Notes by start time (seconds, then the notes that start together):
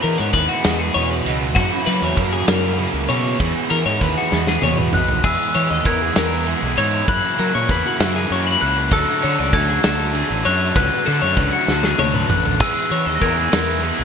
Already playing: E2 E3 G#3 G#4
0.03 E3 G#3 B3 E4 A#4, ride
0.18 G#2 C#5
0.33 D#2 E3 G#3 B3 E4 B4, kick, ride
0.49 F#4
0.64 E2 G#3 B3 E4, snare, ride
0.79 G#4
0.94 E2 B2 E3 G#3 B3 E4 C#5, ride
1.10 B4
1.26 C#2 G#3 B3 D#4 E4, ride
1.55 F#2 C#3 E3 F#3 C#4 F#4, kick, ride
1.59 A#3 E4
1.86 E3 F#3 A#3 C#4 E4 B4, ride
2.02 E2 C#5
2.17 F#2 C#3 E3 F#3 A#3 A#4, kick, ride
2.21 E4
2.33 G#4
2.47 F#2 E3 A#3 E4 A#4, snare, ride
2.78 C#3 E3 A#3 E4 G#4, ride
2.94 C#2
3.08 B2 E3 A#3 C#4 E4 C#5, ride
3.38 E2 E3 G#3 B3 E4 G#4 B4, kick, ride
3.69 E3 G#3 B3 E4 A#4, ride
3.86 G#2 C#5
4.00 D#2 E3 G#3 B3 E4 B4, kick, ride
4.18 F#4
4.31 E2 G#3 B3 E4, snare
4.47 G#4, snare
4.62 E2 B2 E3 G#3 B3 E4 C#5, high tom
4.78 B4, mid tom
4.93 B1 G#3 B3 D#4 E4 F#6, mid tom
5.08 floor tom
5.24 E2 E3 G#3 B3 E4 G#4 E6, kick, crash
5.55 E3 G#3 B3 E4 C#5, ride
5.71 D#2 D#5
5.85 E2 E3 G#3 B3 E4 A#4 G#6, kick, ride
6.02 G#4
6.15 E2 G#3 B3 E4 A#4, snare, ride
6.46 E3 G#3 B3 E4 G#4, ride
6.63 B1
6.77 G#2 G#3 B3 E4 C#5 G#6, ride
7.08 F#2 C#3 E3 A#3 E4 B5 F#6, kick, ride
7.38 E3 F#3 A#3 E4 A#4, ride
7.55 A#2 C#5
7.69 E2 C#3 E3 A#3 E4 B4, kick, ride
7.86 F#4
8.00 F#2 E3 A#3 E4, snare, ride
8.16 G#4
8.30 F#2 C#3 E3 A#3 E4 C#5, ride
8.47 B5
8.61 C#2 E3 A#3 E4 F#6, ride
8.91 D2 D3 F#3 A3 D4 A4 E6, kick, ride
9.22 D3 F#3 A3 D4 C#5, ride
9.39 C#2 D5
9.53 D2 D3 F#3 A3 D4 A4 G#6, kick, ride
9.69 G#4
9.83 D2 F#3 A3 D4 A4, snare, ride
10.13 D3 F#3 A3 D4 G#4, ride
10.30 A1
10.44 F#2 F#3 A3 D4 C#5 F#6, ride
10.76 C#2 D3 F#3 A3 D4 B4 F#6, kick, ride
11.06 D3 F#3 A3 D4 A4, ride
11.22 F#2 C#5
11.37 C#2 D3 F#3 A3 D4 B4, kick, ride
11.52 F#4
11.67 D2 F#3 A3 D4, snare
11.83 G#4, snare
11.98 D2 D3 F#3 A3 D4 C#5, high tom
12.14 B4, mid tom
12.29 A1 F#3 A3 D4 F#6, mid tom
12.46 floor tom
12.59 E2 E3 G#3 B3 E4 G#4 E6, kick, ride, crash
12.90 E3 G#3 B3 E4 C#5, ride
13.06 D#2 D#5
13.15 A#6
13.20 E2 E3 G#3 B3 E4 A#4 G#6, kick, ride
13.37 G#4
13.51 E2 G#3 B3 E4 A#4, snare, ride
13.82 E3 G#3 B3 E4 G#4, ride
13.99 B1